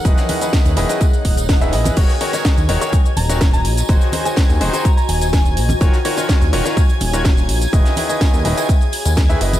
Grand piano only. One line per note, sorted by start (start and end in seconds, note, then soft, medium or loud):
0.05 0.26 D#3 medium
0.05 0.26 E4 medium
0.05 0.26 G#4 medium
0.05 0.26 B4 medium
0.05 0.26 D#5 medium
0.29 0.38 D#3 medium
0.29 0.38 E4 medium
0.29 0.38 G#4 medium
0.29 0.38 B4 medium
0.29 0.38 D#5 medium
0.41 0.74 D#3 medium
0.41 0.74 E4 medium
0.41 0.74 G#4 medium
0.41 0.74 B4 medium
0.41 0.74 D#5 medium
0.77 0.88 D#3 loud
0.77 0.88 E4 medium
0.77 0.88 G#4 medium
0.77 0.88 B4 medium
0.77 0.88 D#5 loud
0.89 1.03 D#3 medium
0.89 1.03 E4 medium
0.89 1.03 G#4 medium
0.89 1.03 B4 medium
0.89 1.03 D#5 loud
1.61 1.71 D#3 medium
1.61 1.71 E4 medium
1.61 1.71 G#4 medium
1.61 1.71 B4 medium
1.61 1.71 E5 loud
1.73 1.94 E4 medium
1.73 1.94 G#4 medium
1.73 1.94 B4 medium
1.73 1.94 D#5 medium
1.97 2.12 D#3 loud
1.97 2.12 D#4 medium
1.97 2.12 F#4 medium
1.97 2.12 A#4 medium
1.97 2.12 C#5 loud
2.21 2.32 D#3 medium
2.21 2.32 D#4 medium
2.21 2.32 F#4 medium
2.21 2.32 A#4 medium
2.21 2.32 C#5 medium
2.33 2.56 D#3 medium
2.33 2.56 D#4 medium
2.33 2.56 F#4 medium
2.33 2.56 A#4 medium
2.33 2.56 C#5 medium
2.69 2.80 D#3 loud
2.69 2.80 D#4 medium
2.69 2.80 F#4 medium
2.69 2.80 A#4 medium
2.69 2.80 C#5 loud
2.81 2.95 D#3 loud
2.81 2.95 D#4 medium
2.81 2.95 F#4 medium
2.81 2.95 A#4 medium
2.81 2.95 C#5 loud
3.29 3.43 D#3 medium
3.29 3.43 D#4 medium
3.29 3.43 F#4 medium
3.29 3.43 A#4 medium
3.29 3.43 C#5 medium
3.89 4.10 D#3 medium
3.89 4.10 D#4 medium
3.89 4.10 F#4 medium
3.89 4.10 G#4 medium
3.89 4.10 C5 medium
4.13 4.22 D#3 medium
4.13 4.22 D#4 medium
4.13 4.22 F#4 medium
4.13 4.22 G#4 medium
4.13 4.22 C5 medium
4.25 4.58 D#3 medium
4.25 4.58 D#4 medium
4.25 4.58 F#4 medium
4.25 4.58 G#4 medium
4.25 4.58 C5 medium
4.61 4.72 D#3 loud
4.61 4.72 D#4 medium
4.61 4.72 F#4 medium
4.61 4.72 G#4 medium
4.61 4.72 C5 loud
4.73 4.87 D#3 medium
4.73 4.87 D#4 medium
4.73 4.87 F#4 medium
4.73 4.87 G#4 medium
4.73 4.87 C5 loud
5.81 5.96 D#3 medium
5.81 5.96 F4 medium
5.81 5.96 F#4 medium
5.81 5.96 A#4 medium
5.81 5.96 C#5 loud
6.05 6.16 D#3 medium
6.05 6.16 F4 medium
6.05 6.16 F#4 medium
6.05 6.16 A#4 medium
6.05 6.16 C#5 loud
6.17 6.40 D#3 medium
6.17 6.40 F4 medium
6.17 6.40 F#4 medium
6.17 6.40 A#4 medium
6.17 6.40 C#5 medium
6.53 6.64 D#3 loud
6.53 6.64 F4 medium
6.53 6.64 F#4 medium
6.53 6.64 A#4 medium
6.53 6.64 C#5 loud
6.65 6.79 D#3 loud
6.65 6.79 F4 medium
6.65 6.79 F#4 medium
6.65 6.79 A#4 medium
6.65 6.79 C#5 loud
7.13 7.27 D#3 medium
7.13 7.27 F4 medium
7.13 7.27 F#4 medium
7.13 7.27 A#4 medium
7.13 7.27 C#5 medium
7.73 7.94 D#3 medium
7.73 7.94 E4 medium
7.73 7.94 G#4 medium
7.73 7.94 B4 medium
7.73 7.94 D#5 medium
7.97 8.06 D#3 medium
7.97 8.06 E4 medium
7.97 8.06 G#4 medium
7.97 8.06 B4 medium
7.97 8.06 D#5 medium
8.09 8.42 D#3 medium
8.09 8.42 E4 medium
8.09 8.42 G#4 medium
8.09 8.42 B4 medium
8.09 8.42 D#5 medium
8.45 8.56 D#3 loud
8.45 8.56 E4 medium
8.45 8.56 G#4 medium
8.45 8.56 B4 medium
8.45 8.56 D#5 loud
8.57 8.71 D#3 medium
8.57 8.71 E4 medium
8.57 8.71 G#4 medium
8.57 8.71 B4 medium
8.57 8.71 D#5 loud
9.29 9.39 D#3 loud
9.29 9.39 E4 medium
9.29 9.39 G#4 medium
9.29 9.39 B4 medium
9.29 9.39 E5 loud
9.41 9.60 E4 medium
9.41 9.60 G#4 medium
9.41 9.60 B4 medium
9.41 9.60 D#5 medium